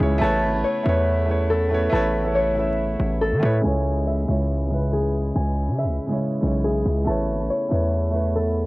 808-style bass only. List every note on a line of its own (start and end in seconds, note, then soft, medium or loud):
0.00 0.20 C#2 loud
0.21 0.44 A1 loud
0.43 0.55 G#1 loud
0.53 0.64 A1 loud
0.86 1.89 E2 loud
1.93 2.96 A1 loud
3.00 3.33 A1 loud
3.32 3.42 E3 loud
3.43 3.63 A2 loud
3.64 4.26 C#2 loud
4.28 5.32 C#2 loud
5.36 5.69 C#2 loud
5.68 5.85 C#3 medium
5.84 5.99 C#2 loud
6.43 6.84 B1 loud
6.86 7.06 C#2 loud
7.07 7.30 A1 loud
7.28 7.41 G#1 loud
7.39 7.49 A1 loud
7.71 8.66 E2 loud